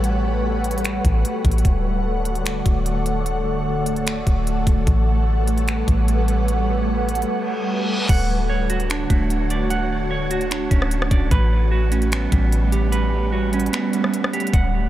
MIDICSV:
0, 0, Header, 1, 7, 480
1, 0, Start_track
1, 0, Key_signature, 2, "major"
1, 0, Tempo, 402685
1, 46, Time_signature, 4, 2, 24, 8
1, 17752, End_track
2, 0, Start_track
2, 0, Title_t, "Synth texture"
2, 0, Program_c, 0, 99
2, 0, Note_on_c, 0, 59, 81
2, 0, Note_on_c, 0, 66, 74
2, 0, Note_on_c, 0, 67, 76
2, 0, Note_on_c, 0, 73, 92
2, 1928, Note_off_c, 0, 59, 0
2, 1928, Note_off_c, 0, 67, 0
2, 1928, Note_off_c, 0, 73, 0
2, 1968, Note_on_c, 0, 73, 82
2, 1968, Note_on_c, 0, 74, 92
2, 5769, Note_off_c, 0, 73, 0
2, 5769, Note_off_c, 0, 74, 0
2, 5806, Note_on_c, 0, 59, 84
2, 5806, Note_on_c, 0, 67, 74
2, 5806, Note_on_c, 0, 73, 89
2, 9599, Note_off_c, 0, 66, 0
2, 9608, Note_off_c, 0, 59, 0
2, 9608, Note_off_c, 0, 67, 0
2, 9608, Note_off_c, 0, 73, 0
2, 9646, Note_on_c, 0, 73, 77
2, 9647, Note_on_c, 0, 62, 84
2, 9647, Note_on_c, 0, 78, 89
2, 13448, Note_off_c, 0, 62, 0
2, 13448, Note_off_c, 0, 73, 0
2, 13448, Note_off_c, 0, 78, 0
2, 13486, Note_on_c, 0, 78, 90
2, 13487, Note_on_c, 0, 55, 81
2, 13487, Note_on_c, 0, 61, 77
2, 13487, Note_on_c, 0, 71, 80
2, 17288, Note_off_c, 0, 55, 0
2, 17288, Note_off_c, 0, 61, 0
2, 17288, Note_off_c, 0, 71, 0
2, 17328, Note_on_c, 0, 62, 80
2, 17328, Note_on_c, 0, 73, 75
2, 17752, Note_off_c, 0, 62, 0
2, 17752, Note_off_c, 0, 73, 0
2, 17752, Note_off_c, 0, 78, 0
2, 17752, End_track
3, 0, Start_track
3, 0, Title_t, "Clean electric guitar"
3, 0, Program_c, 1, 27
3, 9647, Note_on_c, 1, 78, 107
3, 10126, Note_on_c, 1, 73, 87
3, 10368, Note_on_c, 1, 66, 84
3, 10613, Note_on_c, 1, 62, 96
3, 10845, Note_on_c, 1, 57, 70
3, 11087, Note_off_c, 1, 78, 0
3, 11332, Note_on_c, 1, 74, 85
3, 11563, Note_off_c, 1, 74, 0
3, 11566, Note_off_c, 1, 73, 0
3, 11567, Note_on_c, 1, 78, 109
3, 11807, Note_off_c, 1, 66, 0
3, 12047, Note_on_c, 1, 73, 91
3, 12050, Note_off_c, 1, 62, 0
3, 12286, Note_off_c, 1, 57, 0
3, 12288, Note_on_c, 1, 66, 80
3, 12526, Note_on_c, 1, 62, 89
3, 12763, Note_on_c, 1, 61, 76
3, 13007, Note_off_c, 1, 78, 0
3, 13245, Note_on_c, 1, 74, 96
3, 13481, Note_off_c, 1, 74, 0
3, 13485, Note_off_c, 1, 61, 0
3, 13485, Note_on_c, 1, 71, 115
3, 13486, Note_off_c, 1, 62, 0
3, 13487, Note_off_c, 1, 66, 0
3, 13487, Note_off_c, 1, 73, 0
3, 13965, Note_on_c, 1, 66, 88
3, 14208, Note_on_c, 1, 61, 79
3, 14450, Note_on_c, 1, 59, 92
3, 14690, Note_on_c, 1, 55, 74
3, 14926, Note_off_c, 1, 71, 0
3, 15160, Note_off_c, 1, 66, 0
3, 15165, Note_on_c, 1, 67, 87
3, 15401, Note_on_c, 1, 71, 106
3, 15647, Note_off_c, 1, 61, 0
3, 15879, Note_off_c, 1, 59, 0
3, 15883, Note_on_c, 1, 66, 94
3, 16128, Note_off_c, 1, 55, 0
3, 16136, Note_on_c, 1, 61, 82
3, 16365, Note_on_c, 1, 59, 95
3, 16605, Note_off_c, 1, 67, 0
3, 16610, Note_on_c, 1, 55, 78
3, 16844, Note_off_c, 1, 71, 0
3, 17082, Note_off_c, 1, 55, 0
3, 17087, Note_on_c, 1, 67, 91
3, 17325, Note_off_c, 1, 59, 0
3, 17325, Note_off_c, 1, 66, 0
3, 17326, Note_off_c, 1, 67, 0
3, 17327, Note_on_c, 1, 78, 108
3, 17331, Note_off_c, 1, 61, 0
3, 17752, Note_off_c, 1, 78, 0
3, 17752, End_track
4, 0, Start_track
4, 0, Title_t, "Ambient pad"
4, 0, Program_c, 2, 92
4, 0, Note_on_c, 2, 55, 75
4, 0, Note_on_c, 2, 57, 75
4, 0, Note_on_c, 2, 69, 93
4, 0, Note_on_c, 2, 71, 75
4, 0, Note_on_c, 2, 78, 90
4, 1919, Note_off_c, 2, 57, 0
4, 1919, Note_off_c, 2, 69, 0
4, 1927, Note_off_c, 2, 71, 0
4, 1928, Note_off_c, 2, 55, 0
4, 1964, Note_on_c, 2, 50, 81
4, 1965, Note_on_c, 2, 57, 77
4, 1965, Note_on_c, 2, 69, 78
4, 5758, Note_off_c, 2, 78, 0
4, 5767, Note_off_c, 2, 50, 0
4, 5804, Note_on_c, 2, 78, 88
4, 5805, Note_on_c, 2, 55, 74
4, 5805, Note_on_c, 2, 71, 73
4, 9598, Note_off_c, 2, 57, 0
4, 9598, Note_off_c, 2, 69, 0
4, 9607, Note_off_c, 2, 55, 0
4, 9607, Note_off_c, 2, 71, 0
4, 9607, Note_off_c, 2, 78, 0
4, 9645, Note_on_c, 2, 57, 78
4, 9645, Note_on_c, 2, 66, 90
4, 9646, Note_on_c, 2, 50, 83
4, 13447, Note_off_c, 2, 66, 0
4, 13448, Note_off_c, 2, 50, 0
4, 13488, Note_on_c, 2, 55, 82
4, 17289, Note_off_c, 2, 55, 0
4, 17325, Note_on_c, 2, 66, 93
4, 17326, Note_on_c, 2, 50, 85
4, 17752, Note_off_c, 2, 50, 0
4, 17752, Note_off_c, 2, 57, 0
4, 17752, Note_off_c, 2, 66, 0
4, 17752, End_track
5, 0, Start_track
5, 0, Title_t, "808-style bass"
5, 0, Program_c, 3, 38
5, 0, Note_on_c, 3, 33, 103
5, 1199, Note_off_c, 3, 33, 0
5, 1247, Note_on_c, 3, 33, 103
5, 1477, Note_off_c, 3, 33, 0
5, 1724, Note_on_c, 3, 33, 99
5, 1955, Note_off_c, 3, 33, 0
5, 1966, Note_on_c, 3, 26, 108
5, 3118, Note_off_c, 3, 26, 0
5, 3167, Note_on_c, 3, 26, 101
5, 5039, Note_off_c, 3, 26, 0
5, 5087, Note_on_c, 3, 26, 99
5, 5547, Note_off_c, 3, 26, 0
5, 5564, Note_on_c, 3, 26, 99
5, 5795, Note_off_c, 3, 26, 0
5, 5806, Note_on_c, 3, 33, 113
5, 6958, Note_off_c, 3, 33, 0
5, 7007, Note_on_c, 3, 33, 104
5, 8639, Note_off_c, 3, 33, 0
5, 9647, Note_on_c, 3, 26, 118
5, 10799, Note_off_c, 3, 26, 0
5, 10848, Note_on_c, 3, 26, 102
5, 12719, Note_off_c, 3, 26, 0
5, 12767, Note_on_c, 3, 26, 100
5, 13228, Note_off_c, 3, 26, 0
5, 13244, Note_on_c, 3, 26, 103
5, 13476, Note_off_c, 3, 26, 0
5, 13486, Note_on_c, 3, 33, 113
5, 14638, Note_off_c, 3, 33, 0
5, 14688, Note_on_c, 3, 33, 101
5, 16319, Note_off_c, 3, 33, 0
5, 17326, Note_on_c, 3, 26, 119
5, 17752, Note_off_c, 3, 26, 0
5, 17752, End_track
6, 0, Start_track
6, 0, Title_t, "Reverse cymbal"
6, 0, Program_c, 4, 119
6, 8686, Note_on_c, 4, 60, 82
6, 9646, Note_off_c, 4, 60, 0
6, 17752, End_track
7, 0, Start_track
7, 0, Title_t, "Drums"
7, 46, Note_on_c, 9, 42, 71
7, 165, Note_off_c, 9, 42, 0
7, 766, Note_on_c, 9, 42, 60
7, 846, Note_off_c, 9, 42, 0
7, 846, Note_on_c, 9, 42, 63
7, 926, Note_off_c, 9, 42, 0
7, 926, Note_on_c, 9, 42, 60
7, 1008, Note_off_c, 9, 42, 0
7, 1008, Note_on_c, 9, 42, 77
7, 1019, Note_on_c, 9, 26, 116
7, 1127, Note_off_c, 9, 42, 0
7, 1138, Note_off_c, 9, 26, 0
7, 1247, Note_on_c, 9, 36, 96
7, 1248, Note_on_c, 9, 42, 77
7, 1367, Note_off_c, 9, 36, 0
7, 1367, Note_off_c, 9, 42, 0
7, 1489, Note_on_c, 9, 42, 79
7, 1608, Note_off_c, 9, 42, 0
7, 1724, Note_on_c, 9, 36, 90
7, 1725, Note_on_c, 9, 42, 62
7, 1806, Note_off_c, 9, 42, 0
7, 1806, Note_on_c, 9, 42, 64
7, 1844, Note_off_c, 9, 36, 0
7, 1886, Note_off_c, 9, 42, 0
7, 1886, Note_on_c, 9, 42, 64
7, 1966, Note_off_c, 9, 42, 0
7, 1966, Note_on_c, 9, 36, 103
7, 1966, Note_on_c, 9, 42, 76
7, 2085, Note_off_c, 9, 36, 0
7, 2085, Note_off_c, 9, 42, 0
7, 2686, Note_on_c, 9, 42, 74
7, 2805, Note_off_c, 9, 42, 0
7, 2806, Note_on_c, 9, 42, 43
7, 2925, Note_off_c, 9, 42, 0
7, 2927, Note_on_c, 9, 42, 76
7, 2939, Note_on_c, 9, 26, 115
7, 3047, Note_off_c, 9, 42, 0
7, 3058, Note_off_c, 9, 26, 0
7, 3167, Note_on_c, 9, 36, 95
7, 3167, Note_on_c, 9, 42, 80
7, 3286, Note_off_c, 9, 36, 0
7, 3286, Note_off_c, 9, 42, 0
7, 3408, Note_on_c, 9, 42, 77
7, 3527, Note_off_c, 9, 42, 0
7, 3646, Note_on_c, 9, 42, 74
7, 3765, Note_off_c, 9, 42, 0
7, 3886, Note_on_c, 9, 42, 72
7, 4005, Note_off_c, 9, 42, 0
7, 4603, Note_on_c, 9, 46, 56
7, 4605, Note_on_c, 9, 42, 74
7, 4722, Note_off_c, 9, 46, 0
7, 4724, Note_off_c, 9, 42, 0
7, 4725, Note_on_c, 9, 42, 43
7, 4845, Note_off_c, 9, 42, 0
7, 4847, Note_on_c, 9, 42, 76
7, 4858, Note_on_c, 9, 26, 118
7, 4966, Note_off_c, 9, 42, 0
7, 4978, Note_off_c, 9, 26, 0
7, 5087, Note_on_c, 9, 36, 91
7, 5088, Note_on_c, 9, 42, 78
7, 5206, Note_off_c, 9, 36, 0
7, 5207, Note_off_c, 9, 42, 0
7, 5329, Note_on_c, 9, 42, 78
7, 5448, Note_off_c, 9, 42, 0
7, 5564, Note_on_c, 9, 36, 94
7, 5567, Note_on_c, 9, 42, 73
7, 5683, Note_off_c, 9, 36, 0
7, 5686, Note_off_c, 9, 42, 0
7, 5806, Note_on_c, 9, 36, 108
7, 5806, Note_on_c, 9, 42, 73
7, 5925, Note_off_c, 9, 36, 0
7, 5925, Note_off_c, 9, 42, 0
7, 6526, Note_on_c, 9, 42, 77
7, 6646, Note_off_c, 9, 42, 0
7, 6646, Note_on_c, 9, 42, 45
7, 6766, Note_off_c, 9, 42, 0
7, 6767, Note_on_c, 9, 42, 74
7, 6778, Note_on_c, 9, 26, 120
7, 6886, Note_off_c, 9, 42, 0
7, 6897, Note_off_c, 9, 26, 0
7, 7008, Note_on_c, 9, 36, 95
7, 7008, Note_on_c, 9, 42, 81
7, 7127, Note_off_c, 9, 36, 0
7, 7128, Note_off_c, 9, 42, 0
7, 7249, Note_on_c, 9, 42, 77
7, 7369, Note_off_c, 9, 42, 0
7, 7488, Note_on_c, 9, 42, 69
7, 7607, Note_off_c, 9, 42, 0
7, 7728, Note_on_c, 9, 42, 70
7, 7847, Note_off_c, 9, 42, 0
7, 8447, Note_on_c, 9, 42, 59
7, 8526, Note_off_c, 9, 42, 0
7, 8526, Note_on_c, 9, 42, 60
7, 8607, Note_off_c, 9, 42, 0
7, 8607, Note_on_c, 9, 42, 59
7, 8726, Note_off_c, 9, 42, 0
7, 9646, Note_on_c, 9, 36, 111
7, 9647, Note_on_c, 9, 42, 77
7, 9647, Note_on_c, 9, 49, 107
7, 9766, Note_off_c, 9, 36, 0
7, 9766, Note_off_c, 9, 42, 0
7, 9766, Note_off_c, 9, 49, 0
7, 10367, Note_on_c, 9, 42, 74
7, 10486, Note_off_c, 9, 42, 0
7, 10487, Note_on_c, 9, 42, 44
7, 10606, Note_off_c, 9, 42, 0
7, 10608, Note_on_c, 9, 42, 78
7, 10619, Note_on_c, 9, 26, 122
7, 10727, Note_off_c, 9, 42, 0
7, 10739, Note_off_c, 9, 26, 0
7, 10848, Note_on_c, 9, 36, 97
7, 10849, Note_on_c, 9, 42, 77
7, 10967, Note_off_c, 9, 36, 0
7, 10968, Note_off_c, 9, 42, 0
7, 11090, Note_on_c, 9, 42, 78
7, 11209, Note_off_c, 9, 42, 0
7, 11327, Note_on_c, 9, 42, 74
7, 11447, Note_off_c, 9, 42, 0
7, 11568, Note_on_c, 9, 42, 77
7, 11687, Note_off_c, 9, 42, 0
7, 12285, Note_on_c, 9, 46, 59
7, 12287, Note_on_c, 9, 42, 74
7, 12404, Note_off_c, 9, 46, 0
7, 12406, Note_off_c, 9, 42, 0
7, 12407, Note_on_c, 9, 42, 45
7, 12527, Note_off_c, 9, 42, 0
7, 12528, Note_on_c, 9, 42, 80
7, 12539, Note_on_c, 9, 26, 122
7, 12647, Note_off_c, 9, 42, 0
7, 12658, Note_off_c, 9, 26, 0
7, 12768, Note_on_c, 9, 36, 100
7, 12769, Note_on_c, 9, 42, 81
7, 12887, Note_off_c, 9, 36, 0
7, 12888, Note_off_c, 9, 42, 0
7, 12897, Note_on_c, 9, 37, 95
7, 13008, Note_on_c, 9, 42, 80
7, 13016, Note_off_c, 9, 37, 0
7, 13127, Note_off_c, 9, 42, 0
7, 13136, Note_on_c, 9, 37, 103
7, 13244, Note_on_c, 9, 36, 96
7, 13246, Note_on_c, 9, 42, 75
7, 13255, Note_off_c, 9, 37, 0
7, 13363, Note_off_c, 9, 36, 0
7, 13365, Note_off_c, 9, 42, 0
7, 13485, Note_on_c, 9, 42, 76
7, 13486, Note_on_c, 9, 36, 114
7, 13604, Note_off_c, 9, 42, 0
7, 13605, Note_off_c, 9, 36, 0
7, 14205, Note_on_c, 9, 42, 76
7, 14325, Note_off_c, 9, 42, 0
7, 14326, Note_on_c, 9, 42, 45
7, 14445, Note_off_c, 9, 42, 0
7, 14447, Note_on_c, 9, 42, 77
7, 14458, Note_on_c, 9, 26, 121
7, 14566, Note_off_c, 9, 42, 0
7, 14577, Note_off_c, 9, 26, 0
7, 14687, Note_on_c, 9, 36, 98
7, 14688, Note_on_c, 9, 42, 81
7, 14807, Note_off_c, 9, 36, 0
7, 14807, Note_off_c, 9, 42, 0
7, 14929, Note_on_c, 9, 42, 78
7, 15048, Note_off_c, 9, 42, 0
7, 15167, Note_on_c, 9, 42, 78
7, 15286, Note_off_c, 9, 42, 0
7, 15407, Note_on_c, 9, 42, 72
7, 15526, Note_off_c, 9, 42, 0
7, 16127, Note_on_c, 9, 42, 66
7, 16206, Note_off_c, 9, 42, 0
7, 16206, Note_on_c, 9, 42, 64
7, 16286, Note_off_c, 9, 42, 0
7, 16286, Note_on_c, 9, 42, 65
7, 16368, Note_off_c, 9, 42, 0
7, 16368, Note_on_c, 9, 42, 79
7, 16379, Note_on_c, 9, 26, 120
7, 16487, Note_off_c, 9, 42, 0
7, 16498, Note_off_c, 9, 26, 0
7, 16608, Note_on_c, 9, 42, 76
7, 16727, Note_off_c, 9, 42, 0
7, 16737, Note_on_c, 9, 37, 92
7, 16850, Note_on_c, 9, 42, 79
7, 16856, Note_off_c, 9, 37, 0
7, 16969, Note_off_c, 9, 42, 0
7, 16978, Note_on_c, 9, 37, 108
7, 17087, Note_on_c, 9, 42, 64
7, 17097, Note_off_c, 9, 37, 0
7, 17167, Note_off_c, 9, 42, 0
7, 17167, Note_on_c, 9, 42, 66
7, 17247, Note_off_c, 9, 42, 0
7, 17247, Note_on_c, 9, 42, 67
7, 17326, Note_on_c, 9, 36, 112
7, 17327, Note_off_c, 9, 42, 0
7, 17327, Note_on_c, 9, 42, 75
7, 17445, Note_off_c, 9, 36, 0
7, 17446, Note_off_c, 9, 42, 0
7, 17752, End_track
0, 0, End_of_file